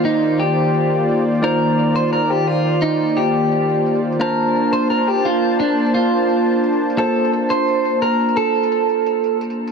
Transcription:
<<
  \new Staff \with { instrumentName = "Clean electric guitar" } { \time 4/4 \key bes \major \tempo 4 = 173 ees'4 g'2~ g'8 r8 | bes'4. c''8 bes'8 g'8 f'4 | ees'4 g'2~ g'8 r8 | bes'4. c''8 bes'8 g'8 f'4 |
d'4 f'2~ f'8 r8 | a'4 r8 c''4. bes'4 | a'2. r4 | }
  \new Staff \with { instrumentName = "Analog synth pad" } { \time 4/4 \key bes \major <ees bes f' c'' d''>1~ | <ees bes f' c'' d''>1~ | <ees bes f' c'' d''>1 | <bes d' c'' a''>1~ |
<bes d' c'' a''>1~ | <bes d' c'' a''>1~ | <bes d' c'' a''>1 | }
  \new Staff \with { instrumentName = "Tine electric piano" } { \time 4/4 \key bes \major <bes ees' f' c'' d''>1 | <bes ees' f' c'' d''>1~ | <bes ees' f' c'' d''>1 | <bes d' f' c'' a''>1~ |
<bes d' f' c'' a''>1 | <bes d' f' c'' a''>1~ | <bes d' f' c'' a''>1 | }
  \new DrumStaff \with { instrumentName = "Drums" } \drummode { \time 4/4 tamb8 tamb16 tamb16 tamb4 tamb8 tamb8 tamb16 tamb8 tamb16 | tamb8 tamb16 tamb16 tamb4 tamb8 tamb8 tamb16 tamb8 tamb16 | tamb8 tamb16 tamb16 tamb4 tamb8 tamb8 tamb16 tamb8 tamb16 | tamb8 tamb16 tamb16 tamb4 tamb8 tamb8 tamb16 tamb8 tamb16 |
tamb8 tamb16 tamb16 tamb4 tamb8 tamb8 tamb16 tamb8 tamb16 | tamb8 tamb16 tamb16 tamb4 tamb8 tamb8 tamb16 tamb8 tamb16 | tamb8 tamb16 tamb16 tamb8 tamb8 tamb8 tamb8 tamb16 tamb8 tamb16 | }
>>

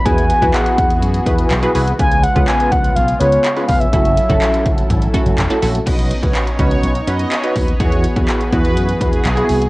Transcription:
<<
  \new Staff \with { instrumentName = "Soft synth lead" } { \time 4/4 \key e \major \tempo 4 = 124 gis''4 fis''4. r4. | gis''8 fis''8 gis''8 fis''8 eis''8 cis''4 eis''16 e''16~ | e''2. r4 | r1 |
r1 | }
  \new Staff \with { instrumentName = "Supersaw synth" } { \time 4/4 \key e \major r1 | r1 | r1 | dis''16 r8 cis''16 r8 cis''8 r8 dis''8 cis''16 r16 b'16 r16 |
cis''16 r8 b'16 r8 b'8 r8 gis'8. r8. | }
  \new Staff \with { instrumentName = "Analog polysynth" } { \time 4/4 \key e \major <b e' fis' gis' b'>8 r16 <b e' fis' gis' b'>4~ <b e' fis' gis' b'>16 r8 <b e' fis' gis' b'>8 r16 <b e' fis' gis' b'>16 <b e' fis' gis' b'>16 r16 | <b cis' eis' gis' b'>8 r16 <b cis' eis' gis' b'>4~ <b cis' eis' gis' b'>16 r8 <b cis' eis' gis' b'>8 r16 <b cis' eis' gis' b'>16 <b cis' eis' gis' b'>16 r16 | <a cis' e' fis' a'>8 r16 <a cis' e' fis' a'>4~ <a cis' e' fis' a'>16 r8 <a cis' e' fis' a'>8 r16 <a cis' e' fis' a'>16 <a cis' e' fis' a'>16 r16 | <cis' dis' fis' b'>8 r16 <cis' dis' fis' b'>8 r16 <cis' dis' fis' b'>8. r16 <cis' dis' fis' b'>8 r16 <cis' dis' fis' b'>8 r16 |
<b e' fis' gis'>8 r16 <b e' fis' gis'>8 r16 <b e' fis' b'>8. r16 <b e' fis' b'>8 r16 <b e' fis' gis'>8 r16 | }
  \new Staff \with { instrumentName = "Analog synth pad" } { \time 4/4 \key e \major << { <e fis' gis'>1 | <cis eis'>1 | <fis e' a'>1 | <cis' dis'>1 |
<e fis' gis'>1 | } \\ { b1 | gis1 | cis'1 | b1~ |
b1 | } >> }
  \new Staff \with { instrumentName = "Slap bass" } { \clef bass \time 4/4 \key e \major e,8. e,16 r8 e,8 fis,8 e,8 b,,8 c,8 | cis,8. cis,16 r8 cis,8 b,,8 cis,8 r8 eis,,8 | fis,,8. fis,,16 r8 fis,,8 gis,,8 r16 fis,,16 e,,16 r16 ais,,8 | b,,8. cis,16 r8 cis,8 b,,8 fis,8 r8 dis,8 |
e,8. e,16 r8 e,8 fis,8 e,8 b,,8 c,8 | }
  \new DrumStaff \with { instrumentName = "Drums" } \drummode { \time 4/4 <hh bd>16 hh16 hh16 <hh bd>16 <hc hh>16 hh16 <hh bd>16 hh16 hh16 hh16 <hh bd>16 hh16 <hc hh>16 hh16 hho16 hh16 | <hh bd>16 hh16 hh16 <hh bd>16 <hc hh>16 hh16 <hh bd>16 hh16 hh16 hh16 hh16 hh16 <hc hh>16 hh16 <hho bd>16 hh16 | <hh bd>16 hh16 hh16 <hh bd>16 <hc hh>16 hh16 <hh bd>16 hh16 <hh bd>16 hh16 <hh bd>16 hh16 <hc hh>16 hh16 hho16 hh16 | <cymc hh bd>16 hh16 hh16 <hh bd>16 <hc hh>16 hh16 <hh bd>16 hh16 hh16 hh16 hh16 hh16 <hc hh>16 hh16 <hho bd>16 hh16 |
<hh bd>16 hh16 hh16 <hh bd>16 <hc hh>16 hh16 <hh bd>16 hh16 hh16 hh16 <hh bd>16 hh16 <hc hh>16 hh16 hho16 hh16 | }
>>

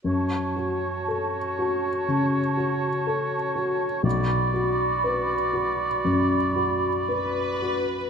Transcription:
<<
  \new Staff \with { instrumentName = "Flute section" } { \time 4/4 \key fis \minor \tempo 4 = 60 a''1 | b''2.~ b''8 r8 | }
  \new Staff \with { instrumentName = "Oboe" } { \time 4/4 \key fis \minor cis''1 | d''2.~ d''8 r8 | }
  \new Staff \with { instrumentName = "Violin section" } { \time 4/4 \key fis \minor r1 | r2. b'4 | }
  \new Staff \with { instrumentName = "Clarinet" } { \time 4/4 \key fis \minor fis'1 | fis'2.~ fis'8 r8 | }
  \new Staff \with { instrumentName = "Grand piano" } { \time 4/4 \key fis \minor fis,8 fis'8 a'8 fis'8 cis8 fis'8 a'8 fis'8 | b,,8 fis'8 b'8 fis'8 fis,8 fis'8 b'8 fis'8 | }
>>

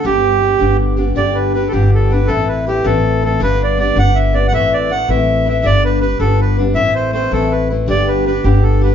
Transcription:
<<
  \new Staff \with { instrumentName = "Accordion" } { \time 6/8 \key g \major \tempo 4. = 107 g'2 r4 | d''8 b'8 b'16. a'32 g'8 a'8 b'8 | a'8 b'8 g'8 a'4 a'8 | b'8 d''8 d''8 fis''8 e''8 d''16. fis''32 |
e''8 d''8 fis''8 e''4 e''8 | d''8 b'8 b'8 a'8 b'8 r8 | e''8 c''8 c''8 a'8 b'8 r8 | d''8 b'8 b'8 g'8 a'8 b'8 | }
  \new Staff \with { instrumentName = "Steel-string acoustic guitar" } { \time 6/8 \key g \major <g, d g b d' g'>4 <d' g'>8 <g, d g b d' g'>4 <g b d' g'>8 | <g, d g b d' g'>4 <g b d' g'>8 <g, d g b d' g'>4 <g b d' g'>8 | <a, e a c' e' b'>4 <a c' e' b'>8 <a, e a c' e' b'>4 <a c' e' b'>8 | <g, d g b d' b'>4 <g b d' b'>8 <g, d g b d' b'>4 <g b d' b'>8 |
<a, e a c' e' b'>4 <a c' e' b'>8 <a, e a c' e' b'>4 <a c' e' b'>8 | <g, d g b d' b'>4 <g b d' b'>8 <g, d g b d' b'>4 <g b d' b'>8 | <a, e a c' e' b'>4 <a c' e' b'>8 <a, e a c' e' b'>4 <a c' e' b'>8 | <g, d g b d' g'>4 <g b d' g'>8 <g, d g b d' g'>4 <g b d' g'>8 | }
  \new Staff \with { instrumentName = "Upright bass" } { \clef bass \time 6/8 \key g \major g,,4. g,,4. | g,,4. g,,4. | a,,4. a,,4. | g,,4. g,,4. |
a,,4. a,,4. | g,,4. g,,4. | a,,4. a,,4. | g,,4. g,,4. | }
>>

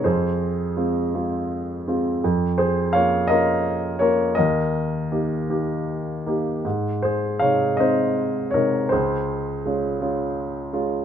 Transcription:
\new Staff \with { instrumentName = "Grand piano" } { \time 6/8 \key aes \major \tempo 4. = 55 << { <aes' c''>2~ <aes' c''>8 r8 | r8 <aes' c''>8 <des'' f''>8 <bes' ees''>4 <bes' des''>8 | <bes' ees''>2~ <bes' ees''>8 r8 | r8 <aes' c''>8 <des'' f''>8 <c'' ees''>4 <bes' des''>8 |
<aes' c''>2~ <aes' c''>8 r8 | } \\ { f,4 <aes c' f'>8 <aes c' f'>4 <aes c' f'>8 | f,4 <bes des' f'>8 <bes des' f'>4 <bes des' f'>8 | ees,4 <bes ees' g'>8 <bes ees' g'>4 <bes ees' g'>8 | aes,4 <c aes ees'>8 <aes c' ees'>4 <c aes ees'>8 |
des,4 <aes des' f'>8 <aes des' f'>4 <aes des' f'>8 | } >> }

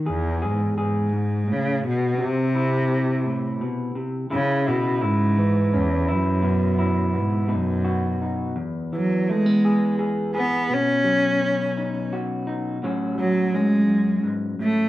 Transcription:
<<
  \new Staff \with { instrumentName = "Clean electric guitar" } { \time 6/8 \key e \major \tempo 4. = 56 << { gis'8 gis'8 gis'2 | c'8 e'2~ e'8 | e'8 e'8 e'4 cis'8 e'8 | b8 e'8 b8 dis'8 fis'8 dis'8 |
r4 a16 b16 gis'8 gis'8 gis'8 | r4 cis'8 dis'8 fis'8 dis'8 | <fis cis' fis'>4 cis'2 | } \\ { e,4. gis,8 a,8 b,8 | c4. a,8 b,8 c8 | cis4. e4. | b,4. b,4. |
e,8 e2~ e8 | b,8 fis2~ fis8 | a,8 fis4 fis,8 gis,8 a,8 | } >> }
  \new Staff \with { instrumentName = "Cello" } { \clef bass \time 6/8 \key e \major e,8 gis,8 gis,4 cis8 b,8 | c2 r4 | cis8 b,8 gis,4 e,8 fis,8~ | fis,4 gis,8 fis,4 r8 |
r8 fis8 gis4 r8 b8 | cis'2 r4 | r8 fis8 gis4 r8 a8 | }
>>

